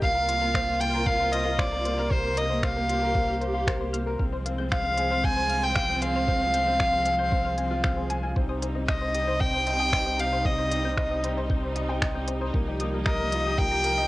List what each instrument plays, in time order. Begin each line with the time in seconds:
0.02 analog synth bass C2, string section C3 A#3 F4, upright piano A#3, violin F5, synth arpeggio sound F6, kick
0.15 synth arpeggio sound A#4, upright piano A#4
0.28 upright piano A#3, synth arpeggio sound C6, closed hi-hat
0.42 upright piano A#3, synth arpeggio sound A#4
0.54 synth arpeggio sound C5, upright piano C5, finger snap, kick
0.67 upright piano A#3, synth arpeggio sound F6
0.80 upright piano F4, synth arpeggio sound A#4, violin G5, closed hi-hat
0.93 upright piano A#4, synth arpeggio sound C6
1.06 upright piano A#3, synth arpeggio sound A#4, violin F5, kick
1.20 upright piano A#4, synth arpeggio sound C5
1.32 upright piano C5, violin D#5, synth arpeggio sound F6, closed hi-hat
1.45 synth arpeggio sound A#4, upright piano F5
1.59 upright piano C5, violin D5, synth arpeggio sound C6, finger snap, kick
1.72 upright piano A#3, synth arpeggio sound A#4
1.84 upright piano A#3, synth arpeggio sound C5, closed hi-hat
1.98 upright piano A#4, synth arpeggio sound F6
2.11 upright piano A#3, string section G4, synth arpeggio sound A#4, violin C5, kick
2.24 upright piano A#4, synth arpeggio sound C6
2.37 upright piano A#3, synth arpeggio sound A#4, violin D#5, closed hi-hat
2.50 upright piano A#3, synth arpeggio sound C5
2.63 upright piano C5, violin F5, synth arpeggio sound F6, finger snap, kick
2.76 upright piano A#3, synth arpeggio sound A#4
2.89 upright piano F4, synth arpeggio sound C6, closed hi-hat
3.02 synth arpeggio sound A#4, upright piano A#4
3.15 upright piano A#3, synth arpeggio sound C5, kick
3.28 upright piano A#4, synth arpeggio sound F6
3.41 synth arpeggio sound A#4, upright piano C5, closed hi-hat
3.54 upright piano F5, synth arpeggio sound C6
3.67 synth arpeggio sound A#4, upright piano C5, finger snap, kick
3.81 upright piano A#3, synth arpeggio sound C5
3.93 upright piano A#3, synth arpeggio sound F6, closed hi-hat
4.06 synth arpeggio sound A#4, upright piano A#4
4.19 analog synth bass C2, string section F3 G#3 C4, upright piano C4, synth arpeggio sound F6, kick
4.33 synth arpeggio sound C5, upright piano C5
4.46 upright piano C4, synth arpeggio sound F5, closed hi-hat
4.58 upright piano C4, synth arpeggio sound G6
4.71 synth arpeggio sound C5, upright piano F5, violin F5, finger snap, kick
4.84 upright piano C4, synth arpeggio sound F6
4.97 upright piano G#4, synth arpeggio sound C5, closed hi-hat
5.11 upright piano C5, synth arpeggio sound F5
5.23 upright piano C4, violin G#5, synth arpeggio sound G6, kick
5.36 synth arpeggio sound C5, upright piano C5
5.49 upright piano F5, synth arpeggio sound F6, closed hi-hat
5.63 synth arpeggio sound C5, violin G5, upright piano G#5
5.75 upright piano F5, synth arpeggio sound F5, finger snap, kick
5.89 upright piano C4, synth arpeggio sound G6
6.01 upright piano C4, synth arpeggio sound C5, violin F5, closed hi-hat
6.15 upright piano C5, synth arpeggio sound F6
6.28 upright piano C4, synth arpeggio sound C5, kick
6.41 upright piano C5, synth arpeggio sound F5
6.54 upright piano C4, synth arpeggio sound G6, closed hi-hat
6.67 upright piano C4, synth arpeggio sound C5
6.80 upright piano F5, synth arpeggio sound F6, finger snap, kick
6.92 upright piano C4, synth arpeggio sound C5
7.05 upright piano G#4, synth arpeggio sound F5, closed hi-hat
7.19 upright piano C5, synth arpeggio sound G6
7.32 upright piano C4, synth arpeggio sound C5, kick
7.45 upright piano C5, synth arpeggio sound F6
7.58 upright piano C4, synth arpeggio sound G#5, closed hi-hat
7.71 upright piano F4, synth arpeggio sound F5
7.84 upright piano C4, synth arpeggio sound F6, finger snap, kick
7.97 upright piano G#4, synth arpeggio sound C5
8.10 upright piano G#5, synth arpeggio sound G#5, closed hi-hat
8.23 upright piano F4, synth arpeggio sound G#5
8.36 analog synth bass C2, string section C3 G3 D#4, upright piano C4, synth arpeggio sound C5, kick
8.49 upright piano C5, synth arpeggio sound D#6
8.62 upright piano C4, synth arpeggio sound C5, closed hi-hat
8.75 upright piano C4, synth arpeggio sound D#5
8.88 violin D#5, upright piano D#5, synth arpeggio sound G6, finger snap, kick
9.02 upright piano C4, synth arpeggio sound C5
9.15 upright piano G4, synth arpeggio sound D#6, closed hi-hat
9.28 upright piano C5, synth arpeggio sound C5
9.41 upright piano C4, synth arpeggio sound D#5, violin G5, kick
9.54 upright piano C5, synth arpeggio sound G6
9.67 synth arpeggio sound C5, upright piano D#5, closed hi-hat
9.80 upright piano G5, synth arpeggio sound D#6
9.93 synth arpeggio sound C5, upright piano D#5, finger snap, kick
10.06 upright piano C4, synth arpeggio sound D#5
10.19 upright piano C4, violin F5, synth arpeggio sound G6, closed hi-hat
10.32 upright piano C5, synth arpeggio sound C5
10.45 upright piano C4, violin D#5, synth arpeggio sound D#6, kick
10.58 upright piano C5, synth arpeggio sound C5
10.72 upright piano C4, synth arpeggio sound D#5, closed hi-hat
10.84 upright piano C4, synth arpeggio sound G6
10.97 synth arpeggio sound C5, upright piano D#5, finger snap, kick
11.11 upright piano C4, synth arpeggio sound D#6
11.24 upright piano G4, synth arpeggio sound C5, closed hi-hat
11.37 upright piano C5, synth arpeggio sound D#5
11.50 upright piano C4, synth arpeggio sound G6, kick
11.63 synth arpeggio sound C5, upright piano C5
11.76 upright piano D#5, synth arpeggio sound D#6, closed hi-hat
11.89 synth arpeggio sound C5, upright piano G5
12.02 synth arpeggio sound D#5, upright piano D#5, finger snap, kick
12.15 upright piano C4, synth arpeggio sound G6
12.28 upright piano C4, synth arpeggio sound C5, closed hi-hat
12.41 upright piano C5, synth arpeggio sound D#6
12.54 analog synth bass C2, string section F3, upright piano A#3, synth arpeggio sound A#4, kick
12.68 upright piano G4, synth arpeggio sound D#5
12.80 upright piano A#3, synth arpeggio sound D#6, closed hi-hat
12.94 upright piano A#3, synth arpeggio sound A#4
13.06 upright piano A#4, violin D#5, synth arpeggio sound A#5, finger snap, kick
13.20 upright piano A#3, synth arpeggio sound A#4
13.32 upright piano F4, synth arpeggio sound D#5, closed hi-hat
13.45 upright piano G4, synth arpeggio sound D#6
13.58 upright piano A#3, synth arpeggio sound A#4, violin G5, kick
13.71 upright piano G4, synth arpeggio sound A#5
13.84 synth arpeggio sound A#4, upright piano A#4, closed hi-hat
13.97 synth arpeggio sound D#5, upright piano D#5